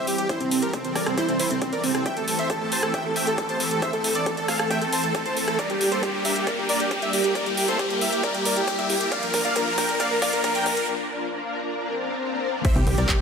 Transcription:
Already playing: E3 G3 C4 G4, riser
0.07 G4, open hi-hat
0.18 E3 G3 C4 G4, closed hi-hat
0.29 E3 G3 C4 E4 A4 C5, kick, closed hi-hat
0.40 C4, closed hi-hat
0.51 E3 G3 C4 A4, open hi-hat
0.62 G4 A#4, closed hi-hat
0.73 E3 G3 C4 A4, kick, closed hi-hat
0.84 E3 G3 C4 A4, closed hi-hat
0.96 A#4 D5, kick, cross-stick, open hi-hat
1.06 E3 G3 C4 A4, cross-stick, closed hi-hat
1.18 E3 G3 C4 E4 A4 C5, kick, closed hi-hat
1.29 C4, closed hi-hat
1.40 E3 G3 C4 E4 A4 C5, open hi-hat
1.51 C4, closed hi-hat
1.62 E3 G3 C4 A4, kick, closed hi-hat
1.72 E3 G3 C4 A4 A#4 D5, closed hi-hat
1.84 C4, open hi-hat
1.95 E3 G3 C4 A4, cross-stick, closed hi-hat
2.06 E3 A3 C4 G4 E5 G5, kick, closed hi-hat
2.17 A4, closed hi-hat
2.28 E3 A3 C4 G4 A4, open hi-hat
2.39 C5 E5, closed hi-hat
2.50 E3 A3 C4 G4 A4, kick, closed hi-hat
2.61 E3 A3 C4 G4 A4
2.72 C5 A5, open hi-hat
2.83 E3 A3 C4 G4 A4, cross-stick, closed hi-hat
2.94 E3 A3 C4 G4 E5 G5, kick, closed hi-hat
3.05 A4
3.16 E3 A3 C4 G4 E5 G5, open hi-hat
3.27 A4, closed hi-hat
3.38 E3 A3 C4 G4 A4, kick, closed hi-hat
3.49 E3 A3 C4 G4 C5 A5, closed hi-hat
3.60 A4, open hi-hat
3.71 E3 A3 C4 G4 A4, closed hi-hat
3.82 E3 A3 C4 A4 C5 E5, kick, closed hi-hat
3.93 A4, closed hi-hat
4.04 E3 A3 C4 A4, open hi-hat
4.15 A4 D5, closed hi-hat
4.26 E3 A3 C4 A4, kick, closed hi-hat
4.37 E3 A3 C4 A4, closed hi-hat
4.48 A4 F5, kick, cross-stick, open hi-hat
4.59 E3 A3 C4 A4, cross-stick, closed hi-hat
4.70 E3 A3 C4 A4 E5 G5, kick, closed hi-hat
4.81 A4, closed hi-hat
4.92 E3 A3 C4 A4 C5 A5, open hi-hat
5.04 A4, closed hi-hat
5.14 E3 A3 C4 A4, kick, closed hi-hat
5.25 E3 A3 C4 A4 C5 A5, closed hi-hat
5.36 A4, open hi-hat
5.48 E3 A3 C4 A4, cross-stick, closed hi-hat
5.59 G3 A#3 D4 A#4 D5, kick, closed hi-hat
5.70 G4, closed hi-hat
5.81 G3 A#3 D4 G4 A#4, open hi-hat
5.92 A4 C5, closed hi-hat
6.03 G3 A#3 D4 G4 A#4, kick, closed hi-hat
6.14 G3 A#3 D4 G4 A#4
6.25 G4 E5, open hi-hat
6.36 G3 A#3 D4 G4 A#4, closed hi-hat
6.47 G3 A#3 D4 A#4 D5, kick, closed hi-hat
6.58 G4
6.69 G3 A#3 D4 A#4 D5, open hi-hat
6.80 G4, closed hi-hat
6.91 G3 A#3 D4 G4 A#4, kick, closed hi-hat
7.02 G3 A#3 D4 G4 A#4 E5, closed hi-hat
7.13 G4, open hi-hat
7.24 G3 A#3 D4 G4 A#4, closed hi-hat
7.35 G3 A#3 E4 A#4 D5, kick, closed hi-hat
7.46 G4, closed hi-hat
7.57 G3 A#3 E4 G4 A#4, open hi-hat
7.68 A4 C5, closed hi-hat
7.79 G3 A#3 E4 G4 A#4, kick, closed hi-hat
7.90 G3 A#3 E4 G4 A#4, closed hi-hat
8.01 G4 E5, open hi-hat
8.12 G3 A#3 E4 G4 A#4, closed hi-hat
8.23 G3 A#3 E4 A#4 D5, kick, closed hi-hat
8.34 G4, closed hi-hat
8.45 G3 A#3 E4 A#4 D5, open hi-hat
8.56 G4, closed hi-hat
8.67 G3 A#3 E4 G4 A#4, kick, closed hi-hat
8.78 G3 A#3 E4 G4 A#4 E5, closed hi-hat
8.89 G4, open hi-hat
9.00 G3 A#3 E4 G4 A#4, closed hi-hat
9.11 F3 A#3 D4 A#4 D5 F5, kick, closed hi-hat
9.23 A#4, closed hi-hat
9.33 F3 A#3 D4 A#4, kick, open hi-hat
9.44 D5 F5, closed hi-hat
9.56 F3 A#3 D4 A#4, kick, closed hi-hat
9.66 F3 A#3 D4 A#4
9.78 A#4 G5, kick, open hi-hat
9.88 F3 A#3 D4 A#4, closed hi-hat
10.00 F3 A#3 D4 A#4 D5 F5, kick, closed hi-hat
10.11 A#4
10.22 F3 A#3 D4 A#4 D5 F5, kick, open hi-hat
10.33 A#4, closed hi-hat
10.44 F3 A#3 D4 A#4, kick, closed hi-hat
10.55 F3 A#3 D4 A#4 G5, closed hi-hat
10.66 A#4, kick, open hi-hat
10.77 F3 A#3 D4 A#4, closed hi-hat
10.88 F3 A#3 D4 A#4
11.10 F3 A#3 D4 A#4
11.32 F3 A#3 D4 A#4
11.43 F3 A#3 D4 A#4
11.65 F3 A#3 D4 A#4
11.76 F3 A#3 D4 A#4, swell
11.98 F3 A#3 D4 A#4
12.20 F3 A#3 D4 A#4
12.32 F3 A#3 D4 A#4
12.54 F3 A#3 D4 A#4
12.65 E3 G3 C4 G4 C5 E5, kick, closed hi-hat, crash, impact
12.76 C2 G4, closed hi-hat
12.87 C2 E3 G3 C4 G4, open hi-hat
12.98 C2 A#4 D5, closed hi-hat
13.09 E3 G3 C4 G4, kick, clap, closed hi-hat

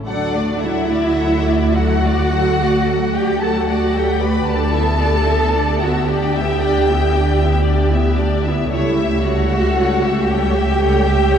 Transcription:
0.07 D2 F#3 D4 A4 D5 F#5
0.35 A3 F#4 D5
0.61 F#3 E4 A4 E5 F#5
0.89 A3 F#4 D5
1.18 F#3 A4 F#5
1.47 A3 F#4 D5
1.75 F#3 F#4 A4 F#5
2.05 A3 F#4 D5
2.32 F#3 A4 F#5
2.61 A3 F#4 D5
2.88 F#3 A4 F#5
3.14 A3 F#4 G4 D5 G5
3.41 F#3 A4 F#5 A5
3.69 A3 F#4 D5 F#5
3.95 F#3 G4 A4 F#5 G5
4.21 A3 F#4 B4 D5 B5
4.48 D2 D4 G4 A4 D5 A5
4.73 B3 E4 E5
5.00 D4 G4 D5
5.27 B3 E4 E5
5.54 D4 G4 D5
5.82 B3 E4 F#4 E5 F#5
6.08 D4 G4 D5 G5
6.35 B3 E4 E5
6.62 D4 G4 D5
6.88 B3 E4 E5
7.15 D4 G4 D5
7.39 B3 E4 E5
7.64 D4 G4 D5
7.92 B3 E4 E5
8.17 D4 G4 D5
8.43 B3 E4 E5
8.69 C#2 G3 E4 A4 C#5 E5
8.98 A3 G4 E5
9.24 G3 F#4 A4 C#5 F#5
9.52 A3 G4 E5
9.78 G3 A4 C#5
10.03 A3 G4 E5
10.27 G3 G4 A4 C#5 G5
10.56 A3 G4 E5
10.81 G3 A4 C#5
11.07 A3 G4 E5
11.32 G3 A4 C#5

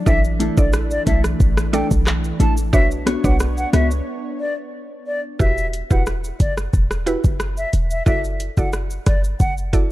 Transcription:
Already playing: D4
0.06 A1 E3 A3 D4 E4 A4 D5 E5, kick, shaker
0.24 shaker
0.40 A3 D4 E4 A4, closed hi-hat, shaker
0.57 A1 D4 E4 A4 D5, kick, shaker
0.73 cross-stick, shaker
0.91 D5, shaker
1.06 B1 A3 D4 E4 A4 E5, kick, closed hi-hat, shaker
1.24 cross-stick, shaker
1.40 A1, kick, shaker
1.57 cross-stick, shaker
1.73 A3 D4 E4 A4 D5 G5, closed hi-hat, shaker
1.91 B1, kick, shaker
2.07 cross-stick, clap, shaker
2.24 shaker
2.40 A1 A3 D4 E4 A4 A5, closed hi-hat, shaker
2.57 shaker
2.73 B1 B3 D4 F#4 B4 C#5 E5, kick, shaker
2.91 shaker
3.06 B3 D4 F#4 C#5, cross-stick, closed hi-hat, shaker
3.24 B1 D4 F#4 B4 C#5 F#5, kick, shaker
3.40 cross-stick, shaker
3.58 F#5, shaker
3.73 C#2 B3 D4 F#4 C#5 E5, cross-stick, closed hi-hat, shaker
3.91 shaker
4.40 D5
5.07 D5
5.39 E1 E4 F#4 G4 B4 E5, kick, shaker
5.58 shaker
5.73 closed hi-hat, shaker
5.91 E1 E4 F#4 G4 B4 F#5, kick, shaker
6.06 cross-stick, shaker
6.24 shaker
6.40 F#1 D5, kick, closed hi-hat, shaker
6.57 cross-stick, shaker
6.73 E1, kick, shaker
6.91 cross-stick, shaker
7.06 E4 F#4 G4 B4, closed hi-hat, shaker
7.24 F#1, kick, shaker
7.40 cross-stick, shaker
7.57 E5, shaker
7.73 E1, closed hi-hat, shaker
7.91 E5, shaker
8.06 F#1 E4 F#4 A4 D5 E5, kick, shaker
8.24 shaker
8.40 closed hi-hat, shaker
8.57 F#1 E4 F#4 A4 D5 F#5, kick, shaker
8.73 cross-stick, shaker
8.91 shaker
9.06 G1 D5, kick, cross-stick, closed hi-hat, shaker
9.24 shaker
9.40 F#1 F#5, kick, shaker
9.58 shaker
9.73 E4 F#4 A4 D5, kick, closed hi-hat, shaker

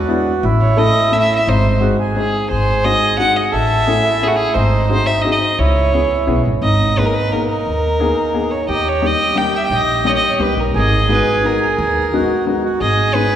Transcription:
Already playing: F#4
0.08 G#3 B3 D4 E4
0.43 A1 E4
0.61 C#5
0.77 A3 C#4 E4 A4 D#5
1.11 A3 C#4 E4 A4 E5
1.21 E5
1.36 E5
1.47 G#1 D#4 C5
1.81 G#3 C4 D#4 F#4 G#4
1.99 G#4
2.16 G#3 C4 D#4 G#4
2.50 G#1 G#4 C5
2.84 G#3 C4 D#4 F#4 D#5
3.18 G#3 C4 D#4 F#4 F#5
3.36 D#5
3.52 A1 A4 E5
3.85 A3 C#4 E4 G#4
4.03 E4
4.22 A3 C#4 E4 G#4
4.27 F#4
4.36 G#4
4.54 G#1 D#4 C5
4.90 C4 D#4 F#4 G#4 C5
5.06 E5
5.21 C4 D#4 F#4 G#4 D#5
5.31 D#5
5.58 C#2 E4 C#5
5.93 B3 C#4 E4 G#4
6.27 B1 B3 C#4 E4 G#4
6.45 G#1
6.62 G#1 D#4 D#5
6.97 A#3 B3 D#4 G#4 B4
7.05 A#4
7.13 B4
7.32 A#3 B3 D#4 G#4 A#4
7.50 A#4
7.66 D#2
8.00 A#3 B3 D#4 G#4
8.34 A#3 B3 D#4 G#4
8.51 C#5
8.68 D#2 G4 D#5
8.88 C#5
9.02 G3 A#3 D#4 G4
9.06 D#5
9.35 G3 A#3 D#4 G4 G5
9.55 E5 G5
9.64 G5
9.70 A#1 D#5
10.05 G3 A#3 D#4 G4 D#5
10.09 C#5
10.17 D#5
10.26 C#5
10.39 C#2 G3 A#3 D#4 G4 B4
10.57 A#1 A#4
10.74 G#1 G#4 D#5
11.09 G#3 B3 D#4 F#4 B4
11.43 G#3 B3 D#4 F#4 A#4
11.63 A#4
11.78 D#2
12.13 G#3 B3 D#4 F#4
12.47 G#3 B3 D#4 F#4
12.64 F#4
12.81 G#1 G#4 D#5
13.14 G#3 B3 D#4 G#4 B4

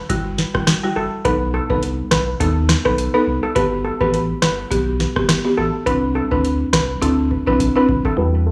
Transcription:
0.09 G1 G3 E4 F#4, kick, closed hi-hat
0.38 snare
0.55 E1 G3 E4 F#4, kick, cross-stick
0.67 cross-stick, snare, closed hi-hat
0.83 G3 E4 F#4
0.96 F#1 A4
1.25 B1 B3 D#4 A4 B4, kick, closed hi-hat
1.54 A4
1.70 C2 B3 D#4 A4 B4, kick
1.83 closed hi-hat
2.11 B1 B4, kick, cross-stick, snare
2.40 D#2 B3 D#4 A4, kick, closed hi-hat
2.69 cross-stick, snare
2.85 B1 B3 D#4 A4 B4, kick, cross-stick
2.98 closed hi-hat
3.14 B3 D#4 A4 B4
3.27 C2
3.43 A4
3.55 G1 B3 F#4 G4 B4, kick, closed hi-hat
3.85 A4
4.01 A1 B3 F#4 G4 B4, kick
4.14 closed hi-hat
4.42 G1 B4, cross-stick, snare
4.71 B1 B3 F#4 G4, kick, closed hi-hat
5.00 snare
5.16 G1 B3 F#4 G4, kick, cross-stick
5.29 cross-stick, snare, closed hi-hat
5.45 B3 F#4 G4
5.58 A1 A4
5.86 C2 C4 D4 E4 B4, kick, closed hi-hat
6.15 A4
6.31 D2 C4 D4 E4 B4, kick
6.45 closed hi-hat
6.73 C2 B4, kick, cross-stick, snare
7.01 D2 C4 D4 E4 A4, kick, closed hi-hat
7.31 kick
7.47 B1 C4 D4 E4 B4, kick
7.60 kick, closed hi-hat
7.76 C4 D4 E4 B4
7.89 C2, kick
8.05 A4, kick
8.17 E2 G3 E4 F#4 B4
8.47 A4

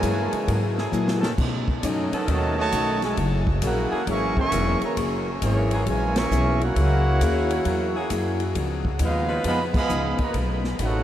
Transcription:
Already playing: C#3 E3 G#3 E4 A#4 C#5 G#5
0.02 G2 F#3 A#3 E4 G#4, kick, hi-hat pedal, ride
0.33 muted upright bass stroke, ride
0.46 G#2 F#3 A#3 E4 G#4, kick, ride
0.78 F#3 A#3 E4 G#4, snare
0.92 A#2 F#3 A#3 E4 G#4, hi-hat pedal
1.08 snare
1.22 D#3 B3 C#4 A4, snare
1.37 B2 A3 C#4 D#4, kick, crash
1.68 kick
1.81 F#2 B2 F#3 A3 C#4 D#4 D5, kick, hi-hat pedal, ride
1.85 C#4 F#4 A4 D#5
2.12 D#3 B3 C#4 A4, muted upright bass stroke, ride
2.27 D#2 B2 D#3 F#3 A3 C#4 D#4 F#4 C#5 D#5 A5, kick, ride
2.57 D#3 F#3 A3 F#4 C#5 D#5 A5
2.72 B1 B2 A3 C#4 D#4, kick, hi-hat pedal, ride
3.02 G#3 E4 A4 C#5 G#5, snare, ride
3.16 F#1 F#3 A#3 E4 G#4, kick, ride
3.47 kick
3.61 A#1 F#3 A#3 C#4 E4 F#4 G#4 A#4 C#5 F#5, kick, hi-hat pedal, ride
3.91 F#3 A#3 E4 G#4, muted upright bass stroke
4.06 G#1 E3 F#3 A#3 C#4 E4 G#4 A#4 E5 G#5 C#6, kick, ride
4.37 E3 A#3 C#4 A#4 E5 G#5 C#6, kick
4.51 E1 F#3 A#3 E4 G#4, kick, hi-hat pedal, ride
4.82 C#3 E3 A#3 G#4 C#5 E5 A#5, muted upright bass stroke, ride
4.96 F#1 F#3 A#3 E4 G#4, kick, ride
5.42 G#1 E3 F#3 A#3 C#4 E4 G#4 C#5, kick, hi-hat pedal, ride
5.71 F#3 A#3 E4 G#4, ride
5.86 A#1 C#3 E3 F#3 G#3 A#3 E4 G#4 A#4 C#5 G#5, kick, ride
6.16 E3 A#3 C#4 A#4 E5 G#5 C#6, snare, ride
6.31 B1 F#3 A#3 E4 G#4, hi-hat pedal
6.61 A#3 C#4 E4 F#4 A#4 C#5 F#5, ride
6.75 C#2 F#3 A#3 E4 G#4, kick, ride
7.20 D#2 F#3 A#3 E4 G#4, kick, hi-hat pedal, ride
7.51 ride
7.64 E2 F#3 A#3 E4 G#4, kick, ride
7.95 F#3 A#3 E4 G#4
8.10 F#2 F#3 A#3 E4 G#4, kick, hi-hat pedal, ride
8.40 ride
8.54 C#2 C#3 F3 B3 D#4, kick, ride
8.85 kick
8.99 D#2 C#3 F3 G#3 B3 D#4 F4, kick, hi-hat pedal, ride
9.05 D#4 G#4 B4 F5
9.28 F3 C#4 D#4 B4
9.44 F2 C#3 F3 G#3 B3 D#4 G#4 B5, kick, ride
9.48 D#5 F5
9.74 F3 G#3 B3 G#4 D#5 F5 B5, kick, crash
9.89 C#2 C#3 F3 B3 D#4, hi-hat pedal
10.18 A#3 F#4 B4 D#5 A#5, muted upright bass stroke, kick, ride
10.34 B1 B2 A3 C#4 D#4, kick, ride
10.64 snare
10.79 A1 B2 A3 C#4 D#4 F#4, kick, hi-hat pedal, ride
10.84 D#4 A4 C#5 F#5

